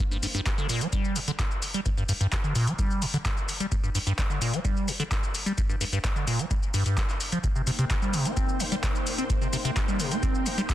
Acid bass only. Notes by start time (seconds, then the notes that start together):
0.11 G2
0.23 G2
0.35 G2
0.46 G2
0.58 D3
0.69 A#2
0.81 G3
0.93 G3
1.16 G2
1.28 D3
1.39 G2
1.74 G3
1.86 G2
1.98 G2
2.09 G2
2.21 G2
2.32 G2
2.44 D3
2.55 A#2
2.67 G3
2.79 G3
3.02 G2
3.14 D3
3.25 G2
3.60 G3
3.72 G2
3.84 G2
3.95 G2
4.07 G2
4.18 G2
4.30 D3
4.41 A#2
4.53 G3
4.65 G3
4.88 G2
5.00 D3
5.11 G2
5.46 G3
5.58 G2
5.69 G2
5.81 G2
5.93 G2
6.04 G2
6.16 D3
6.27 A#2
6.39 G3
6.51 G3
6.74 G2
6.86 G2
6.97 G3
7.32 F3
7.44 C3
7.56 C3
7.67 C3
7.79 C3
7.90 C3
8.02 G3
8.13 C3
8.25 C4
8.37 C4
8.60 C3
8.72 G3
8.83 C3
9.18 C4
9.30 C3
9.42 C3
9.53 C3
9.65 C3
9.76 C3
9.88 G3
9.99 C3
10.11 C4
10.23 C4
10.46 C3
10.58 G3
10.69 C3